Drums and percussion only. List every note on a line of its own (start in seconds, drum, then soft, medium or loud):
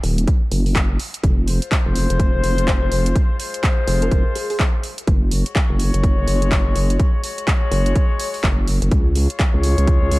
0.04 open hi-hat loud
0.18 closed hi-hat medium
0.28 kick loud
0.28 closed hi-hat medium
0.52 open hi-hat loud
0.66 open hi-hat medium
0.76 kick loud
0.76 clap loud
0.76 closed hi-hat medium
1.00 open hi-hat medium
1.14 closed hi-hat medium
1.24 kick loud
1.24 closed hi-hat medium
1.48 open hi-hat loud
1.62 closed hi-hat medium
1.72 kick loud
1.72 clap loud
1.72 closed hi-hat soft
1.96 open hi-hat loud
2.10 closed hi-hat medium
2.20 kick loud
2.20 closed hi-hat medium
2.44 open hi-hat loud
2.58 closed hi-hat medium
2.68 kick loud
2.68 clap loud
2.68 closed hi-hat medium
2.92 open hi-hat loud
3.06 closed hi-hat medium
3.16 kick loud
3.16 closed hi-hat medium
3.40 open hi-hat loud
3.54 closed hi-hat medium
3.64 kick loud
3.64 clap loud
3.64 closed hi-hat medium
3.88 open hi-hat loud
4.02 closed hi-hat medium
4.12 kick loud
4.12 closed hi-hat medium
4.35 open hi-hat loud
4.50 open hi-hat medium
4.59 kick loud
4.59 clap loud
4.59 closed hi-hat medium
4.83 open hi-hat loud
4.98 closed hi-hat medium
5.07 kick loud
5.07 closed hi-hat medium
5.31 open hi-hat loud
5.46 closed hi-hat medium
5.56 kick loud
5.56 clap loud
5.56 closed hi-hat medium
5.79 open hi-hat loud
5.94 closed hi-hat medium
6.04 kick loud
6.04 closed hi-hat medium
6.28 open hi-hat loud
6.42 closed hi-hat medium
6.52 kick loud
6.52 clap loud
6.52 closed hi-hat medium
6.76 open hi-hat loud
6.90 closed hi-hat medium
7.00 kick loud
7.00 closed hi-hat medium
7.24 open hi-hat loud
7.38 closed hi-hat medium
7.48 kick loud
7.48 clap loud
7.48 closed hi-hat soft
7.72 open hi-hat loud
7.86 closed hi-hat medium
7.96 kick loud
7.96 closed hi-hat medium
8.20 open hi-hat loud
8.34 open hi-hat medium
8.44 kick loud
8.44 clap loud
8.44 closed hi-hat medium
8.68 open hi-hat loud
8.82 closed hi-hat medium
8.91 kick loud
8.91 closed hi-hat medium
9.15 open hi-hat loud
9.30 closed hi-hat medium
9.39 kick loud
9.39 clap loud
9.39 closed hi-hat soft
9.63 open hi-hat loud
9.78 closed hi-hat medium
9.88 kick loud
9.88 closed hi-hat medium
10.11 open hi-hat loud